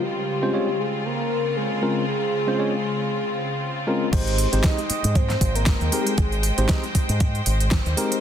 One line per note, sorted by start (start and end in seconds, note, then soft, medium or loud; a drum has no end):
0.03 4.09 C#3 medium
0.03 4.09 C4 medium
0.03 4.09 F4 medium
0.03 0.81 G4 loud
0.42 0.52 G#3 medium
0.42 0.52 C4 medium
0.42 0.52 C#4 medium
0.42 0.52 F4 medium
0.42 0.52 C5 loud
0.53 0.68 G#3 medium
0.53 0.68 C4 medium
0.53 0.68 C#4 medium
0.53 0.68 F4 medium
0.53 0.68 C#5 medium
0.80 1.07 G#4 medium
1.05 1.56 A#4 medium
1.57 2.04 G#4 medium
1.82 2.03 G#3 medium
1.82 2.03 C4 medium
1.82 2.03 C#4 medium
1.82 2.03 F4 medium
1.82 2.03 A#4 medium
2.08 3.84 G#4 loud
2.47 2.57 G#3 medium
2.47 2.57 C4 medium
2.47 2.57 C#4 medium
2.47 2.57 F4 medium
2.47 2.57 C5 loud
2.58 2.73 G#3 medium
2.58 2.73 C4 medium
2.58 2.73 C#4 medium
2.58 2.73 F4 medium
2.58 2.73 C#5 medium
3.87 4.08 G#3 medium
3.87 4.08 C4 medium
3.87 4.08 C#4 medium
3.87 4.08 F4 medium
3.87 4.08 A#4 loud
4.12 4.44 G#1 loud
4.12 4.47 G#3 loud
4.12 8.19 G#3 medium
4.12 4.47 C4 medium
4.12 4.47 D#4 medium
4.12 4.47 G4 medium
4.12 8.20 C5 medium
4.12 4.47 C5 loud
4.12 4.66 C5 loud
4.12 8.19 G5 medium
4.12 kick loud
4.12 closed hi-hat medium
4.12 crash loud
4.27 closed hi-hat soft
4.38 open hi-hat loud
4.52 4.60 G#1 medium
4.52 4.62 G#3 loud
4.52 4.62 C4 medium
4.52 4.63 D#4 medium
4.52 4.63 G4 medium
4.52 4.63 C5 loud
4.52 closed hi-hat medium
4.64 4.78 G#3 medium
4.64 4.78 C4 medium
4.64 4.78 D#4 medium
4.64 4.89 D#5 loud
4.64 4.78 D#5 medium
4.64 kick loud
4.64 snare loud
4.64 closed hi-hat medium
4.78 closed hi-hat soft
4.90 5.17 D#5 loud
4.90 muted fingered electric bass stroke soft
4.90 open hi-hat loud
5.04 5.35 G#2 loud
5.04 closed hi-hat medium
5.15 5.55 C5 loud
5.15 kick loud
5.15 closed hi-hat medium
5.30 snare soft
5.30 closed hi-hat soft
5.41 5.73 G#1 loud
5.41 kick medium
5.41 open hi-hat loud
5.55 5.94 A#4 loud
5.55 closed hi-hat medium
5.66 kick loud
5.66 snare loud
5.66 closed hi-hat medium
5.81 5.88 D#2 medium
5.81 closed hi-hat soft
5.92 6.13 G#3 medium
5.92 6.13 C4 medium
5.92 6.13 D#4 medium
5.92 6.13 G4 medium
5.92 6.02 G#4 medium
5.92 6.13 A#4 loud
5.92 open hi-hat loud
6.01 6.10 G4 medium
6.07 6.44 G#4 medium
6.07 closed hi-hat medium
6.18 6.50 G#1 medium
6.18 kick loud
6.18 closed hi-hat medium
6.32 closed hi-hat soft
6.43 open hi-hat loud
6.58 6.65 G#1 medium
6.58 6.67 G#3 loud
6.58 6.68 C4 medium
6.58 6.68 D#4 medium
6.58 6.68 G4 medium
6.58 6.68 C5 loud
6.58 closed hi-hat medium
6.69 6.83 G#3 medium
6.69 6.83 C4 medium
6.69 6.83 D#4 medium
6.69 6.83 G4 medium
6.69 6.83 D#5 medium
6.69 kick loud
6.69 snare loud
6.69 closed hi-hat medium
6.83 closed hi-hat soft
6.95 muted fingered electric bass stroke soft
6.95 kick medium
6.95 open hi-hat loud
7.09 7.39 G#2 loud
7.09 closed hi-hat medium
7.20 kick loud
7.20 closed hi-hat medium
7.35 closed hi-hat soft
7.46 7.78 G#1 loud
7.46 open hi-hat loud
7.60 closed hi-hat medium
7.71 kick loud
7.71 snare loud
7.71 open hi-hat medium
7.86 7.93 D#2 loud
7.86 closed hi-hat soft
7.97 8.18 G#3 loud
7.97 8.18 C4 medium
7.97 8.18 D#4 medium
7.97 8.18 G4 medium
7.97 8.18 A#4 loud
7.97 open hi-hat loud
8.12 closed hi-hat medium